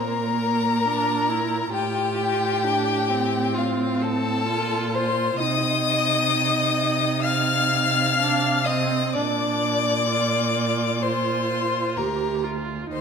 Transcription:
Already playing: A#2 A#3 A#4 A#5
0.85 D4
1.29 E4
1.72 A2 F4 G4 G5
2.64 D4
3.10 C4
3.55 F4 F5
4.02 A4 A5
4.48 A#2 F4
4.94 C5 C6
5.39 C3 D#4 D#5 D#6
7.23 F5 F6
8.20 D4
8.64 C4 D#5 D#6
9.14 A#2 D4 D5 D6
10.10 F4
11.02 F4 C5 C6
11.96 D2 G4 A#4 A#5
12.44 F4
12.91 D#2 D#4 C5 C6

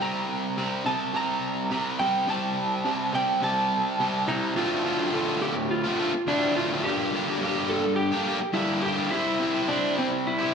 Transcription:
0.00 C3 G3 C4 A#5
0.57 C3 G3 C4
0.85 C3 G3 C4 A5
1.14 C3 G3 C4 A#5
1.71 C3 G3 C4
1.99 C3 G3 C4 G5
2.27 C3 G3 C4 A5
2.85 C3 G3 C4
3.13 C3 G3 C4 G5
3.41 C3 G3 C4 A5
4.00 C3 G3 C4
4.28 C3 G3 C4 E4 A#5
4.55 D2 A2 D3 A3 C4 F4
4.84 D3 A3 C4 F4
4.98 D3 A3 C4 F4
5.12 D2 A2 D3 A3 C4 F4
5.42 G4
5.56 muted overdriven electric guitar stroke
5.71 F4
5.84 D3 A3 C4 F4
5.99 D3 A3 C4 F4
6.14 muted overdriven electric guitar stroke
6.27 D2 A2 D3 A3 C4 D4 F4
6.56 D3 A3 C4 F4
6.70 A3 C4 F4
6.75 D3
6.84 G2 D3 G3 A#3 G4
6.88 D4 G4
7.13 G3 A#3 D4 G4
7.27 A#3 D4 G4
7.31 G3
7.41 G2 D3 G3 A#3 D4 G4
7.69 A4
7.85 muted overdriven electric guitar stroke
7.96 G4
8.12 G3 A#3 D4 G4
8.25 G3 A#3 D4 G4
8.40 muted overdriven electric guitar stroke
8.53 G2 D3 G3 A#3 D4 E4 G4
8.81 G3 A#3 D4 G4
8.96 G3 A#3 D4 G4
9.10 C3 G3 C4 E4
9.15 G4 C5
9.39 C4 E4 G4 C5
9.54 C4 E4 G4 C5
9.68 C3 G3 C4 D4 E4 G4 C5
9.98 C4
10.12 muted overdriven electric guitar stroke
10.27 E4
10.39 C4 E4 G4 C5

